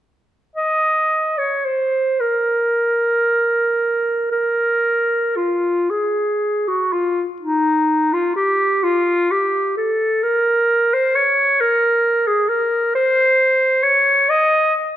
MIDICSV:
0, 0, Header, 1, 2, 480
1, 0, Start_track
1, 0, Key_signature, -5, "minor"
1, 0, Tempo, 1083032
1, 250, Time_signature, 6, 3, 24, 8
1, 735, Tempo, 1149425
1, 1215, Tempo, 1518987
1, 1695, Tempo, 1039861
1, 2655, Tempo, 995025
1, 3135, Tempo, 937500
1, 5055, Tempo, 900901
1, 7088, End_track
2, 0, Start_track
2, 0, Title_t, "Clarinet"
2, 0, Program_c, 0, 71
2, 248, Note_on_c, 0, 75, 47
2, 612, Note_on_c, 0, 73, 33
2, 619, Note_off_c, 0, 75, 0
2, 732, Note_on_c, 0, 72, 38
2, 738, Note_off_c, 0, 73, 0
2, 963, Note_on_c, 0, 70, 44
2, 969, Note_off_c, 0, 72, 0
2, 1691, Note_off_c, 0, 70, 0
2, 1693, Note_on_c, 0, 70, 46
2, 2176, Note_on_c, 0, 65, 40
2, 2183, Note_off_c, 0, 70, 0
2, 2423, Note_on_c, 0, 68, 40
2, 2430, Note_off_c, 0, 65, 0
2, 2785, Note_on_c, 0, 66, 35
2, 2793, Note_off_c, 0, 68, 0
2, 2906, Note_on_c, 0, 65, 36
2, 2914, Note_off_c, 0, 66, 0
2, 3074, Note_off_c, 0, 65, 0
2, 3144, Note_on_c, 0, 63, 48
2, 3509, Note_on_c, 0, 65, 38
2, 3517, Note_off_c, 0, 63, 0
2, 3622, Note_off_c, 0, 65, 0
2, 3625, Note_on_c, 0, 67, 43
2, 3868, Note_on_c, 0, 65, 46
2, 3876, Note_off_c, 0, 67, 0
2, 4112, Note_on_c, 0, 67, 37
2, 4120, Note_off_c, 0, 65, 0
2, 4345, Note_off_c, 0, 67, 0
2, 4348, Note_on_c, 0, 69, 40
2, 4583, Note_on_c, 0, 70, 50
2, 4590, Note_off_c, 0, 69, 0
2, 4945, Note_on_c, 0, 72, 44
2, 4953, Note_off_c, 0, 70, 0
2, 5057, Note_on_c, 0, 73, 47
2, 5065, Note_off_c, 0, 72, 0
2, 5297, Note_on_c, 0, 70, 50
2, 5305, Note_off_c, 0, 73, 0
2, 5653, Note_on_c, 0, 68, 44
2, 5660, Note_off_c, 0, 70, 0
2, 5766, Note_on_c, 0, 70, 43
2, 5774, Note_off_c, 0, 68, 0
2, 6011, Note_off_c, 0, 70, 0
2, 6014, Note_on_c, 0, 72, 61
2, 6483, Note_on_c, 0, 73, 53
2, 6491, Note_off_c, 0, 72, 0
2, 6730, Note_on_c, 0, 75, 56
2, 6738, Note_off_c, 0, 73, 0
2, 6973, Note_off_c, 0, 75, 0
2, 7088, End_track
0, 0, End_of_file